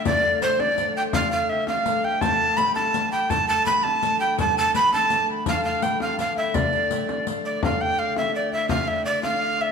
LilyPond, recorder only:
\new Staff \with { instrumentName = "Recorder" } { \time 6/8 \key d \dorian \tempo 4. = 111 d''4 c''8 d''4 g''8 | f''8 f''8 e''8 f''4 g''8 | a''4 b''8 a''4 g''8 | a''8 a''8 b''8 a''4 g''8 |
a''8 a''8 b''8 a''4 r8 | f''8 f''8 g''8 f''8 f''8 e''8 | d''2 r8 d''8 | f''8 g''8 f''8 e''8 d''8 e''8 |
f''8 e''8 d''8 f''4 e''8 | }